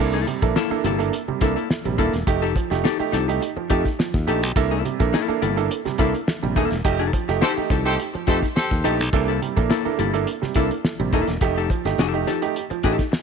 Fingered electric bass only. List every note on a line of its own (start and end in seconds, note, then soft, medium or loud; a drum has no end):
0.00 0.24 C2 loud
0.42 0.54 A#1 medium
0.71 muted fingered electric bass stroke soft
0.84 1.10 G1 medium
1.28 muted fingered electric bass stroke soft
1.41 1.55 C2 medium
1.85 1.97 A#1 medium
1.99 2.12 D#1 medium
2.14 2.26 E1 medium
2.27 2.53 F1 medium
2.71 2.83 F1 medium
3.00 muted fingered electric bass stroke soft
3.13 3.38 C2 medium
3.57 muted fingered electric bass stroke soft
3.71 3.84 F2 medium
4.14 4.26 D#2 medium
4.27 4.43 A#1 medium
4.43 4.55 B1 medium
4.56 4.81 C2 medium
5.00 5.12 A#1 medium
5.29 muted fingered electric bass stroke soft
5.43 5.68 G1 medium
5.86 muted fingered electric bass stroke soft
5.99 6.13 C2 loud
6.43 6.55 A#1 medium
6.56 6.70 D#1 medium
6.72 6.84 E1 medium
6.85 7.10 F1 loud
7.29 7.41 F1 medium
7.58 muted fingered electric bass stroke soft
7.70 7.96 C2 medium
8.15 muted fingered electric bass stroke soft
8.28 8.41 F2 medium
8.72 8.83 D#2 medium
8.85 9.00 A#1 medium
9.00 9.12 B1 medium
9.13 9.39 C2 medium
9.57 9.69 A#1 medium
9.86 muted fingered electric bass stroke soft
9.99 10.24 G1 medium
10.43 muted fingered electric bass stroke soft
10.56 10.69 C2 medium
11.00 11.12 A#1 medium
11.13 11.26 D#1 medium
11.28 11.40 E1 medium
11.41 11.67 F1 medium
11.85 11.97 G1 medium
11.98 12.24 F1 medium
12.71 muted fingered electric bass stroke medium
12.84 12.98 A1 medium